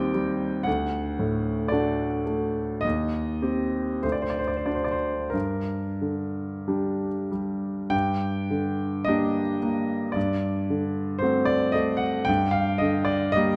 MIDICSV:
0, 0, Header, 1, 2, 480
1, 0, Start_track
1, 0, Key_signature, -2, "minor"
1, 0, Tempo, 1058201
1, 784, Tempo, 1113173
1, 1264, Time_signature, 4, 2, 24, 8
1, 1264, Tempo, 1197605
1, 1744, Tempo, 1318681
1, 2704, Tempo, 1252610
1, 3184, Tempo, 1142857
1, 3664, Tempo, 1086957
1, 4144, Tempo, 1065719
1, 5676, End_track
2, 0, Start_track
2, 0, Title_t, "Grand piano"
2, 0, Program_c, 0, 0
2, 0, Control_c, 0, 64, 127
2, 0, Note_on_c, 0, 39, 56
2, 0, Note_on_c, 0, 51, 38
2, 0, Note_on_c, 0, 55, 36
2, 0, Note_on_c, 0, 60, 39
2, 0, Note_on_c, 0, 67, 44
2, 0, Note_on_c, 0, 75, 80
2, 0, Note_on_c, 0, 79, 77
2, 46, Note_off_c, 0, 55, 0
2, 48, Note_off_c, 0, 60, 0
2, 49, Note_off_c, 0, 67, 0
2, 64, Note_on_c, 0, 55, 40
2, 277, Note_off_c, 0, 39, 0
2, 288, Note_on_c, 0, 78, 68
2, 296, Note_off_c, 0, 79, 0
2, 301, Note_on_c, 0, 38, 45
2, 303, Note_off_c, 0, 55, 0
2, 310, Control_c, 0, 64, 0
2, 312, Note_off_c, 0, 75, 0
2, 314, Note_off_c, 0, 51, 0
2, 383, Control_c, 0, 64, 127
2, 540, Note_on_c, 0, 45, 37
2, 764, Note_on_c, 0, 74, 65
2, 776, Note_off_c, 0, 78, 0
2, 779, Note_on_c, 0, 57, 36
2, 782, Note_on_c, 0, 62, 34
2, 782, Note_on_c, 0, 66, 39
2, 923, Note_off_c, 0, 45, 0
2, 1000, Note_off_c, 0, 57, 0
2, 1002, Note_off_c, 0, 62, 0
2, 1002, Note_off_c, 0, 66, 0
2, 1015, Note_on_c, 0, 57, 34
2, 1246, Note_off_c, 0, 38, 0
2, 1249, Note_on_c, 0, 75, 70
2, 1255, Note_off_c, 0, 74, 0
2, 1262, Note_off_c, 0, 57, 0
2, 1266, Note_on_c, 0, 39, 46
2, 1271, Control_c, 0, 64, 0
2, 1354, Control_c, 0, 64, 127
2, 1497, Note_on_c, 0, 60, 31
2, 1498, Note_on_c, 0, 67, 34
2, 1726, Note_off_c, 0, 60, 0
2, 1727, Note_off_c, 0, 67, 0
2, 1731, Note_off_c, 0, 39, 0
2, 1737, Note_off_c, 0, 75, 0
2, 1739, Note_on_c, 0, 72, 48
2, 1741, Note_on_c, 0, 38, 37
2, 1750, Control_c, 0, 64, 0
2, 1774, Note_off_c, 0, 72, 0
2, 1774, Note_on_c, 0, 74, 49
2, 1807, Note_off_c, 0, 74, 0
2, 1810, Note_on_c, 0, 72, 47
2, 1817, Control_c, 0, 64, 127
2, 1838, Note_on_c, 0, 74, 45
2, 1841, Note_off_c, 0, 72, 0
2, 1871, Note_on_c, 0, 72, 50
2, 1872, Note_off_c, 0, 74, 0
2, 1903, Note_on_c, 0, 74, 49
2, 1905, Note_off_c, 0, 72, 0
2, 1937, Note_off_c, 0, 74, 0
2, 1937, Note_on_c, 0, 72, 49
2, 1969, Note_on_c, 0, 74, 47
2, 1971, Note_off_c, 0, 72, 0
2, 1971, Note_on_c, 0, 62, 29
2, 1975, Note_on_c, 0, 66, 30
2, 2003, Note_on_c, 0, 72, 46
2, 2004, Note_off_c, 0, 74, 0
2, 2037, Note_on_c, 0, 74, 47
2, 2038, Note_off_c, 0, 72, 0
2, 2062, Note_on_c, 0, 72, 52
2, 2072, Note_off_c, 0, 74, 0
2, 2201, Note_off_c, 0, 38, 0
2, 2201, Note_off_c, 0, 62, 0
2, 2203, Note_off_c, 0, 66, 0
2, 2203, Note_on_c, 0, 70, 46
2, 2211, Note_off_c, 0, 72, 0
2, 2215, Note_on_c, 0, 43, 35
2, 2225, Control_c, 0, 64, 0
2, 2309, Control_c, 0, 64, 127
2, 2463, Note_on_c, 0, 50, 29
2, 2704, Note_on_c, 0, 55, 25
2, 2704, Note_on_c, 0, 62, 27
2, 2706, Note_on_c, 0, 67, 28
2, 2849, Note_off_c, 0, 50, 0
2, 2934, Note_off_c, 0, 55, 0
2, 2935, Note_off_c, 0, 62, 0
2, 2935, Note_off_c, 0, 67, 0
2, 2942, Note_off_c, 0, 70, 0
2, 2948, Note_on_c, 0, 55, 28
2, 3167, Note_off_c, 0, 43, 0
2, 3172, Note_on_c, 0, 43, 48
2, 3173, Note_on_c, 0, 79, 73
2, 3183, Note_off_c, 0, 55, 0
2, 3192, Control_c, 0, 64, 0
2, 3262, Control_c, 0, 64, 127
2, 3426, Note_on_c, 0, 50, 34
2, 3653, Note_on_c, 0, 75, 74
2, 3657, Note_off_c, 0, 79, 0
2, 3667, Note_on_c, 0, 58, 35
2, 3669, Note_on_c, 0, 62, 36
2, 3669, Note_on_c, 0, 67, 38
2, 3809, Note_off_c, 0, 50, 0
2, 3889, Note_off_c, 0, 58, 0
2, 3890, Note_off_c, 0, 62, 0
2, 3890, Note_off_c, 0, 67, 0
2, 3908, Note_on_c, 0, 58, 38
2, 4119, Note_off_c, 0, 43, 0
2, 4127, Note_on_c, 0, 74, 54
2, 4138, Note_off_c, 0, 75, 0
2, 4143, Note_on_c, 0, 43, 45
2, 4145, Note_off_c, 0, 58, 0
2, 4152, Control_c, 0, 64, 0
2, 4212, Control_c, 0, 64, 127
2, 4388, Note_on_c, 0, 50, 36
2, 4606, Note_on_c, 0, 72, 63
2, 4614, Note_off_c, 0, 74, 0
2, 4623, Note_on_c, 0, 57, 36
2, 4626, Note_on_c, 0, 60, 35
2, 4627, Note_on_c, 0, 66, 36
2, 4728, Note_on_c, 0, 74, 70
2, 4734, Note_off_c, 0, 72, 0
2, 4769, Note_off_c, 0, 50, 0
2, 4845, Note_off_c, 0, 57, 0
2, 4846, Note_off_c, 0, 60, 0
2, 4847, Note_off_c, 0, 66, 0
2, 4847, Note_on_c, 0, 75, 70
2, 4855, Note_off_c, 0, 74, 0
2, 4861, Note_on_c, 0, 57, 35
2, 4959, Note_on_c, 0, 78, 68
2, 4975, Note_off_c, 0, 75, 0
2, 5083, Note_off_c, 0, 43, 0
2, 5084, Note_on_c, 0, 79, 81
2, 5089, Note_off_c, 0, 78, 0
2, 5100, Note_off_c, 0, 57, 0
2, 5100, Note_on_c, 0, 43, 51
2, 5109, Control_c, 0, 64, 0
2, 5170, Control_c, 0, 64, 127
2, 5203, Note_on_c, 0, 77, 69
2, 5211, Note_off_c, 0, 79, 0
2, 5326, Note_on_c, 0, 75, 68
2, 5330, Note_off_c, 0, 77, 0
2, 5340, Note_on_c, 0, 50, 37
2, 5444, Note_on_c, 0, 74, 68
2, 5452, Note_off_c, 0, 75, 0
2, 5568, Note_on_c, 0, 75, 84
2, 5573, Note_off_c, 0, 74, 0
2, 5585, Note_on_c, 0, 55, 37
2, 5587, Note_on_c, 0, 58, 37
2, 5587, Note_on_c, 0, 67, 41
2, 5676, Note_off_c, 0, 43, 0
2, 5676, Note_off_c, 0, 50, 0
2, 5676, Note_off_c, 0, 55, 0
2, 5676, Note_off_c, 0, 58, 0
2, 5676, Note_off_c, 0, 67, 0
2, 5676, Note_off_c, 0, 75, 0
2, 5676, End_track
0, 0, End_of_file